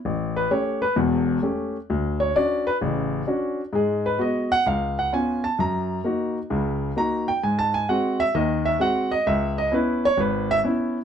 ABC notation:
X:1
M:4/4
L:1/8
Q:"Swing" 1/4=130
K:C#m
V:1 name="Grand piano"
z B c B z4 | z c =d B z4 | G B d f ^e f g a | ^a3 z3 a =g |
(3g a g f e d e f d | e d B c B e z2 |]
V:2 name="Grand piano"
A,,,2 [A,C=G] z [E,,,E,,]2 [A,CG] z | =D,,2 [C=DF] z [A,,,C,]2 [CDF] z | [G,,G,]2 [G,B,F] z C,,2 [B,C^E] z | F,,2 [^A,DF] z [C,,C,]2 [A,DF] z |
G,,2 [G,^B,F] z [D,,D,]2 [G,B,F] z | C,,2 [B,CE] z G,,,2 [B,CE] z |]